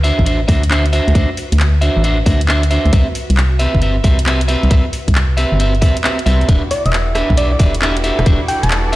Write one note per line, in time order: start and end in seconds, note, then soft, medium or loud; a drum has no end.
0.00 0.12 D2 loud
0.00 7.13 F#4 medium
0.00 7.72 B4 medium
0.00 7.80 E5 medium
0.00 0.25 E5 loud
0.04 0.25 D4 medium
0.04 0.25 F#4 medium
0.04 0.25 C5 medium
0.04 open hi-hat medium
0.19 0.45 A1 medium
0.19 kick medium
0.26 0.40 D4 medium
0.26 0.40 F#4 medium
0.26 0.40 C5 medium
0.26 0.40 E5 medium
0.26 closed hi-hat medium
0.48 1.01 D2 medium
0.48 0.62 D4 medium
0.48 0.62 F#4 medium
0.48 0.62 C5 medium
0.48 0.62 E5 loud
0.48 kick loud
0.48 open hi-hat loud
0.63 closed hi-hat medium
0.70 0.84 D4 medium
0.70 0.84 F#4 medium
0.70 0.84 C5 medium
0.70 0.84 E5 medium
0.70 clap loud
0.86 closed hi-hat medium
0.93 1.13 D4 medium
0.93 1.13 F#4 medium
0.93 1.14 C5 medium
0.93 1.13 E5 loud
0.93 open hi-hat medium
1.08 1.13 D2 medium
1.08 closed hi-hat soft
1.15 1.26 D2 loud
1.15 1.29 D4 medium
1.15 1.29 F#4 medium
1.15 1.29 C5 medium
1.15 1.29 E5 medium
1.15 kick loud
1.15 closed hi-hat medium
1.37 open hi-hat loud
1.52 1.90 D2 loud
1.52 closed hi-hat medium
1.60 clap loud
1.81 2.02 D4 medium
1.81 2.02 F#4 medium
1.81 2.02 C5 medium
1.81 2.02 E5 loud
1.81 open hi-hat medium
1.97 2.23 A1 medium
2.04 2.18 D4 medium
2.04 2.18 F#4 medium
2.04 2.18 C5 medium
2.04 2.18 E5 medium
2.04 closed hi-hat medium
2.26 2.79 D2 medium
2.26 2.40 D4 medium
2.26 2.40 F#4 medium
2.26 2.40 C5 medium
2.26 2.40 E5 loud
2.26 kick loud
2.26 open hi-hat loud
2.41 closed hi-hat medium
2.48 2.62 D4 loud
2.48 2.62 F#4 medium
2.48 2.62 C5 medium
2.48 2.62 E5 medium
2.48 clap loud
2.63 closed hi-hat medium
2.71 2.91 D4 medium
2.71 2.91 F#4 medium
2.71 2.91 C5 medium
2.71 2.91 E5 loud
2.71 open hi-hat medium
2.85 2.91 D2 medium
2.85 closed hi-hat soft
2.93 3.03 C2 loud
2.93 3.06 C4 medium
2.93 3.06 G4 medium
2.93 3.06 B4 medium
2.93 3.06 E5 medium
2.93 kick loud
2.93 closed hi-hat medium
3.15 open hi-hat loud
3.30 3.67 C2 loud
3.30 closed hi-hat medium
3.37 clap loud
3.59 3.80 C4 medium
3.59 3.80 G4 medium
3.59 3.80 B4 medium
3.59 3.80 E5 loud
3.59 open hi-hat medium
3.75 4.01 G1 medium
3.75 kick medium
3.81 3.95 C4 medium
3.81 3.95 G4 medium
3.81 3.95 B4 medium
3.81 3.95 E5 medium
3.81 closed hi-hat medium
4.04 4.56 C2 medium
4.04 4.18 C4 medium
4.04 4.18 G4 medium
4.04 4.18 B4 medium
4.04 4.18 E5 loud
4.04 kick medium
4.04 open hi-hat loud
4.19 closed hi-hat medium
4.26 4.40 C4 loud
4.26 4.40 G4 medium
4.26 4.40 B4 medium
4.26 4.40 E5 medium
4.26 clap loud
4.41 closed hi-hat medium
4.48 4.69 C4 medium
4.48 4.69 G4 medium
4.48 4.69 B4 medium
4.48 4.69 E5 loud
4.48 open hi-hat loud
4.63 4.69 C2 medium
4.63 closed hi-hat soft
4.70 4.81 C2 loud
4.70 4.84 C4 medium
4.70 4.84 G4 medium
4.70 4.84 B4 medium
4.70 4.84 E5 medium
4.70 kick loud
4.70 closed hi-hat medium
4.93 open hi-hat loud
5.08 5.45 C2 medium
5.08 kick medium
5.08 closed hi-hat medium
5.15 clap loud
5.37 5.58 C4 medium
5.37 5.58 G4 medium
5.37 5.58 B4 medium
5.37 5.58 E5 loud
5.37 open hi-hat medium
5.52 5.83 G1 medium
5.59 5.73 C4 medium
5.59 5.73 G4 medium
5.59 5.73 B4 medium
5.59 5.73 E5 medium
5.59 closed hi-hat medium
5.75 closed hi-hat soft
5.82 5.92 C2 medium
5.82 5.95 C4 medium
5.82 5.95 G4 medium
5.82 5.95 B4 loud
5.82 5.95 E5 loud
5.82 kick loud
5.82 open hi-hat loud
5.97 closed hi-hat medium
6.04 6.18 C4 medium
6.04 6.18 G4 medium
6.04 6.18 B4 medium
6.04 6.18 E5 medium
6.04 clap loud
6.19 closed hi-hat medium
6.26 6.44 C2 medium
6.26 6.47 C4 medium
6.26 6.47 G4 medium
6.26 6.47 B4 medium
6.26 6.47 E5 loud
6.26 open hi-hat medium
6.41 closed hi-hat soft
6.48 6.59 E1 loud
6.48 8.96 G3 medium
6.48 8.96 B3 medium
6.48 6.62 D4 medium
6.48 8.96 D4 medium
6.48 8.96 E4 medium
6.48 8.96 F#4 medium
6.48 6.62 G4 medium
6.48 6.62 B4 medium
6.48 6.62 E5 medium
6.48 kick loud
6.48 closed hi-hat medium
6.71 6.83 D5 medium
6.71 open hi-hat loud
6.86 7.23 E1 loud
6.86 7.15 E5 medium
6.86 closed hi-hat medium
6.93 clap loud
7.08 8.96 A4 medium
7.15 7.36 D4 medium
7.15 7.36 G4 medium
7.15 7.36 B4 medium
7.15 7.36 E5 loud
7.15 cross-stick medium
7.15 open hi-hat medium
7.30 7.56 B1 medium
7.30 kick medium
7.37 7.51 D4 medium
7.37 7.51 G4 medium
7.37 7.51 B4 medium
7.37 7.47 D5 medium
7.37 7.51 E5 medium
7.37 closed hi-hat medium
7.52 7.57 D5 medium
7.59 8.12 E1 medium
7.59 7.73 D4 medium
7.59 7.73 G4 medium
7.59 7.73 B4 medium
7.59 7.73 E5 medium
7.59 kick loud
7.59 open hi-hat loud
7.74 closed hi-hat medium
7.82 7.95 D4 loud
7.82 7.95 G4 medium
7.82 7.95 B4 medium
7.82 7.95 E5 loud
7.82 clap loud
7.97 8.96 D5 medium
7.97 closed hi-hat soft
8.04 8.25 D4 medium
8.04 8.25 G4 medium
8.04 8.25 B4 medium
8.04 8.25 E5 loud
8.04 open hi-hat loud
8.19 8.24 E1 medium
8.19 cross-stick medium
8.19 closed hi-hat soft
8.26 8.37 E1 loud
8.26 8.40 D4 medium
8.26 8.40 G4 medium
8.26 8.40 B4 medium
8.26 8.40 E5 medium
8.26 kick loud
8.26 closed hi-hat medium
8.48 8.60 G5 medium
8.48 open hi-hat loud
8.63 8.96 E1 loud
8.63 8.93 A5 medium
8.63 closed hi-hat medium
8.71 clap loud
8.93 8.96 E5 loud
8.93 open hi-hat medium